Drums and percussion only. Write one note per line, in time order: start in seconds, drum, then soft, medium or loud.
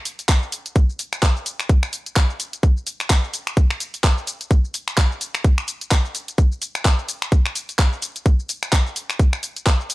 0.05 open hi-hat loud
0.05 shaker medium
0.19 open hi-hat medium
0.19 shaker soft
0.29 kick loud
0.29 clap loud
0.29 closed hi-hat medium
0.29 shaker soft
0.43 shaker soft
0.52 open hi-hat loud
0.52 shaker medium
0.66 closed hi-hat medium
0.66 shaker soft
0.76 kick loud
0.76 closed hi-hat soft
0.76 shaker soft
0.90 shaker soft
0.99 open hi-hat loud
0.99 shaker medium
1.13 finger snap medium
1.13 closed hi-hat medium
1.13 shaker soft
1.23 kick loud
1.23 clap loud
1.23 closed hi-hat medium
1.23 shaker soft
1.36 shaker soft
1.46 open hi-hat loud
1.46 shaker medium
1.60 finger snap medium
1.60 closed hi-hat medium
1.60 shaker soft
1.69 kick loud
1.69 closed hi-hat soft
1.69 shaker soft
1.83 finger snap medium
1.83 shaker soft
1.93 open hi-hat loud
1.93 shaker medium
2.06 closed hi-hat medium
2.06 shaker soft
2.16 kick loud
2.16 clap loud
2.16 closed hi-hat soft
2.16 shaker soft
2.30 shaker soft
2.40 open hi-hat loud
2.40 shaker medium
2.53 closed hi-hat medium
2.53 shaker soft
2.63 kick loud
2.63 closed hi-hat soft
2.63 shaker soft
2.77 shaker soft
2.87 open hi-hat loud
2.87 shaker medium
3.00 finger snap medium
3.00 closed hi-hat medium
3.00 shaker soft
3.10 kick loud
3.10 clap loud
3.10 closed hi-hat soft
3.10 shaker soft
3.24 shaker soft
3.34 open hi-hat loud
3.34 shaker medium
3.47 finger snap medium
3.47 closed hi-hat medium
3.47 shaker soft
3.57 kick loud
3.57 closed hi-hat soft
3.57 shaker soft
3.71 finger snap medium
3.71 shaker soft
3.80 open hi-hat loud
3.80 shaker medium
3.94 open hi-hat medium
3.94 shaker soft
4.04 kick loud
4.04 clap loud
4.04 closed hi-hat medium
4.04 shaker soft
4.18 shaker soft
4.27 open hi-hat loud
4.27 shaker medium
4.41 closed hi-hat medium
4.41 shaker soft
4.51 kick loud
4.51 closed hi-hat medium
4.51 shaker soft
4.65 shaker soft
4.74 open hi-hat loud
4.74 shaker medium
4.88 finger snap medium
4.88 closed hi-hat medium
4.88 shaker soft
4.98 kick loud
4.98 clap loud
4.98 closed hi-hat medium
4.98 shaker soft
5.11 shaker soft
5.21 open hi-hat loud
5.21 shaker medium
5.35 finger snap medium
5.35 closed hi-hat medium
5.35 shaker soft
5.44 kick loud
5.44 closed hi-hat soft
5.44 shaker soft
5.58 finger snap medium
5.58 shaker soft
5.68 open hi-hat loud
5.68 shaker medium
5.81 closed hi-hat medium
5.81 shaker soft
5.91 kick loud
5.91 clap loud
5.91 closed hi-hat medium
5.91 shaker soft
6.05 shaker soft
6.15 open hi-hat loud
6.15 shaker medium
6.28 closed hi-hat medium
6.28 shaker soft
6.38 kick loud
6.38 closed hi-hat medium
6.38 shaker soft
6.52 shaker soft
6.62 open hi-hat loud
6.62 shaker medium
6.75 finger snap medium
6.75 closed hi-hat medium
6.75 shaker soft
6.85 kick loud
6.85 clap loud
6.85 closed hi-hat medium
6.85 shaker soft
6.99 shaker soft
7.09 open hi-hat loud
7.09 shaker medium
7.22 finger snap medium
7.22 closed hi-hat medium
7.22 shaker soft
7.32 kick loud
7.32 closed hi-hat soft
7.32 shaker soft
7.46 finger snap medium
7.46 shaker soft
7.55 open hi-hat loud
7.55 shaker medium
7.69 open hi-hat medium
7.69 shaker soft
7.79 kick loud
7.79 clap loud
7.79 closed hi-hat medium
7.79 shaker soft
7.93 shaker soft
8.02 open hi-hat loud
8.02 shaker medium
8.16 closed hi-hat medium
8.16 shaker soft
8.26 kick loud
8.26 closed hi-hat medium
8.26 shaker soft
8.40 shaker soft
8.49 open hi-hat loud
8.49 shaker medium
8.63 finger snap medium
8.63 closed hi-hat medium
8.63 shaker soft
8.73 kick loud
8.73 clap loud
8.73 closed hi-hat medium
8.73 shaker soft
8.87 shaker soft
8.96 open hi-hat loud
8.96 shaker medium
9.10 finger snap medium
9.10 closed hi-hat medium
9.10 shaker soft
9.19 kick loud
9.19 closed hi-hat medium
9.19 shaker soft
9.33 finger snap medium
9.33 shaker soft
9.43 open hi-hat loud
9.43 shaker medium
9.56 closed hi-hat medium
9.56 shaker soft
9.66 kick loud
9.66 clap loud
9.66 closed hi-hat medium
9.66 shaker soft
9.80 shaker soft
9.90 open hi-hat loud
9.90 shaker medium